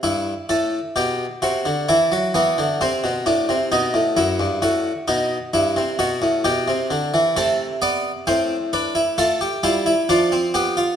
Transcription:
<<
  \new Staff \with { instrumentName = "Harpsichord" } { \time 4/4 \key e \phrygian \tempo 4 = 66 << { r1 | r1 | a'8 d''8 c''8 b'8 a'8 e'8 f'8 g'8 | } \\ { e'8 a'8 g'8 fis'8 e'8 b8 c'8 d'8 | dis'8 e'8 fis'8 dis'8 e'8 fis'8 g'4 | a8 b8 c'8 d'16 e'16 f'16 g'16 f'16 e'16 d'16 c'16 b16 f'16 | } >> }
  \new Staff \with { instrumentName = "Harpsichord" } { \clef bass \time 4/4 \key e \phrygian g,8 a,8 b,8 c16 d16 e16 fis16 e16 d16 c16 b,16 a,16 c16 | b,16 a,16 fis,16 g,16 a,8 b,8 g,16 c16 b,16 a,16 b,16 c16 d16 e16 | c4 a,4 a8 g8 f4 | }
>>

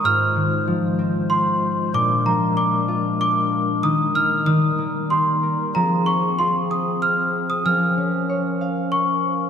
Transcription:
<<
  \new Staff \with { instrumentName = "Celesta" } { \time 3/4 \key bes \dorian \tempo 4 = 95 f'''4 r4 c'''4 | d'''8 bes''8 d'''4 d'''4 | ees'''8 f'''8 ees'''4 c'''4 | bes''8 des'''8 c'''8 ees'''8 f'''8. ees'''16 |
f'''4 r4 des'''4 | }
  \new Staff \with { instrumentName = "Pipe organ" } { \time 3/4 \key bes \dorian <f' c''>2. | <d' bes'>2. | <ees' bes'>2. | <c' aes'>2. |
<des' bes'>2. | }
  \new Staff \with { instrumentName = "Pipe organ" } { \clef bass \time 3/4 \key bes \dorian aes2.~ | aes2.~ | aes4 g2 | f2.~ |
f2. | }
  \new Staff \with { instrumentName = "Harp" } { \time 3/4 \key bes \dorian aes,8 ees8 f8 c'4. | bes,8 f8 d'8 f'4. | ees8 bes8 ees8 bes8 g'8 bes'8 | f8 c'8 f'8 aes'4. |
f8 des'8 des''8 f''4. | }
>>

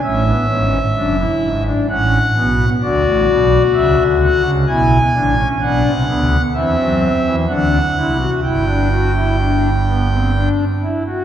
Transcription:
<<
  \new Staff \with { instrumentName = "Pipe organ" } { \time 3/4 \key b \minor \tempo 4 = 64 << { e''2 fis''4 | d''4 e''8 fis''8 gis''4 | \key g \major fis''4 e''4 fis''4 | g''2~ g''8 r8 | } \\ { cis'16 b16 cis'8 d'16 e'8 d'16 cis'8 b8 | fis'2 e'8 d'16 cis'16 | d'8 b8 c'4 d'8 e'16 fis'16 | e'16 d'16 fis'16 e'16 d'8 b16 c'16 d'8 e'16 fis'16 | } >> }
  \new Staff \with { instrumentName = "Pipe organ" } { \clef bass \time 3/4 \key b \minor <a,, a,>8 <gis,, gis,>8 <fis,, fis,>8 <gis,, gis,>8 <a,, a,>8 <b,, b,>8 | <d, d>16 <a,, a,>16 <b,, b,>8 <cis, cis>16 <d, d>8 <cis, cis>16 <b,, b,>8 <a,, a,>8 | \key g \major <b,, b,>16 <c, c>16 <d, d>8 <e, e>16 <fis, fis>8 <e, e>16 <d, d>8 <c, c>8 | <g,, g,>2~ <g,, g,>8 r8 | }
>>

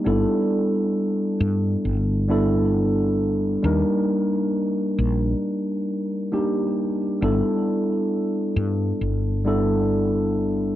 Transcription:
<<
  \new Staff \with { instrumentName = "Tine electric piano" } { \time 4/4 \key g \major \tempo 4 = 67 <g b d' e' a'>2~ <g b d' e' a'>8 <g b d' e' a'>4. | <g bes d' ees' bes'>2. <g bes d' ees' g'>4 | <g b d' e' a'>2~ <g b d' e' a'>8 <g b d' e' a'>4. | }
  \new Staff \with { instrumentName = "Fretless electric bass" } { \clef bass \time 4/4 \key g \major g,,8 r4 g,8 g,,2 | ees,8 r4 bes,,8 r2 | g,,8 r4 g,8 g,,2 | }
>>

